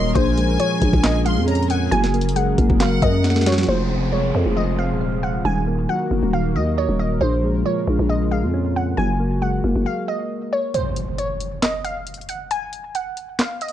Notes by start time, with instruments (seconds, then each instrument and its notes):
Already playing: 808-style bass D#1, analog synth pad D#3 A#3 F#4 A#4, synth keys D#3 F#3 A#3 D#5, synth pluck D#5, violin section C6
0.15 808-style bass A#1, synth keys A#2, analog synth pad F3 C#4 G#4, synth pluck C5, violin section G#5, kick, closed hi-hat
0.38 synth keys G#3, closed hi-hat
0.60 synth keys F3, synth pluck C#5, closed hi-hat
0.81 808-style bass A#1, synth keys G#3, kick, closed hi-hat
0.93 808-style bass A#1, kick
1.04 synth keys A#2, synth pluck D#5, snare, clap, closed hi-hat
1.26 synth keys G#3, synth pluck F5, violin section C6, closed hi-hat
1.37 808-style bass F2
1.48 synth keys C#4, violin section A#5, closed hi-hat
1.55 closed hi-hat
1.63 closed hi-hat
1.70 synth keys C#4, synth pluck F#5, violin section G#5, closed hi-hat
1.91 808-style bass F#1, analog synth pad F#3 A#4, synth keys F#3, synth pluck G#5, closed hi-hat
2.04 snare
2.14 synth keys A#3, closed hi-hat
2.21 closed hi-hat
2.29 closed hi-hat
2.36 synth keys G#3, synth pluck F#5, closed hi-hat
2.58 808-style bass F#1, synth keys A#3, kick, closed hi-hat
2.70 808-style bass F#1, kick
2.80 synth keys F#3, synth pluck F5, violin section F#5, snare, clap, closed hi-hat
3.02 808-style bass F#2, synth keys A#3, synth pluck D#5, kick, closed hi-hat
3.24 synth keys F#4, snare, closed hi-hat
3.30 snare
3.36 snare
3.41 snare
3.46 synth keys F#4, synth pluck C#5, snare, closed hi-hat
3.52 snare
3.58 snare
3.63 snare
3.68 808-style bass F1, analog synth pad C3 G#3 F4 G#4, synth keys F3, synth pluck C5, downlifter
3.90 synth keys C3
4.12 synth keys G#3, synth pluck C#5
4.34 808-style bass F2, synth keys C4
4.46 808-style bass F1
4.57 synth keys F3, synth pluck D#5
4.79 synth keys C4, synth pluck F5
4.90 808-style bass D#1
5.01 synth keys F5
5.23 synth keys F5, synth pluck F#5
5.45 808-style bass D#1, synth keys D#3, analog synth pad D#3 A#3 F#4 A#4, synth pluck G#5
5.67 synth keys A#3
5.89 synth keys F#3, synth pluck F#5
6.11 808-style bass F#1, synth keys A#3
6.23 808-style bass D#1
6.33 synth keys D#3, synth pluck F5
6.55 808-style bass D#2, synth keys A#3, synth pluck D#5
6.77 synth pluck C#5, synth keys D#5
6.89 808-style bass D#1
6.99 synth keys D#5, synth pluck D#5
7.21 808-style bass A#1, synth keys A#2, analog synth pad C#3 G#3 F4, synth pluck C5
7.43 synth keys G#3
7.65 synth keys F3, synth pluck C#5
7.87 808-style bass A#1, synth keys G#3
7.99 808-style bass A#1
8.09 synth keys A#2, synth pluck D#5
8.31 synth keys G#3, synth pluck F5
8.43 808-style bass F2
8.54 synth keys C#4
8.76 synth keys C#4, synth pluck F#5
8.97 808-style bass F#1, synth keys F#3, analog synth pad F#4, synth pluck G#5
9.20 synth keys A#3
9.42 synth keys G#3, synth pluck F#5
9.64 808-style bass F#1, synth keys A#3
9.76 808-style bass F#1
9.86 synth pluck F5
10.08 synth pluck D#5
10.53 synth pluck C#5
10.74 synth pluck C5, closed hi-hat, impact
10.96 closed hi-hat
11.18 synth pluck C#5, closed hi-hat
11.40 closed hi-hat
11.62 synth pluck D#5, snare, clap, closed hi-hat
11.84 synth pluck F5, closed hi-hat
12.07 closed hi-hat
12.14 closed hi-hat
12.21 closed hi-hat
12.29 synth pluck F#5, closed hi-hat
12.51 synth pluck G#5, closed hi-hat
12.73 closed hi-hat
12.95 synth pluck F#5, closed hi-hat
13.17 closed hi-hat
13.39 synth pluck F5, snare, clap, closed hi-hat
13.61 synth pluck D#5, closed hi-hat
13.68 closed hi-hat